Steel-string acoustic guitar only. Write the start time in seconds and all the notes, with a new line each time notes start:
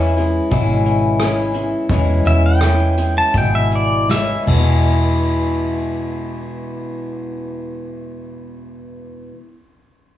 Already playing: E3 G#3 C#4 E4
0.17 E3 G#3 C#4 E4
0.51 E2 B2 E3 G#3 C#4 E4
1.19 E3 G#3 C#4 E4
1.54 E3 G#3 C#4 E4
1.90 E2 B2 E3 G#3 C#4 E4
2.60 E3 G#3 C#4 E4
2.97 E3 G#3 C#4 E4
3.34 E2 B2 E3 G#3 E4
4.09 E3 G#3 C#4 E4
4.42 E2
4.47 B2 E3
4.53 G#3 B3
4.59 E4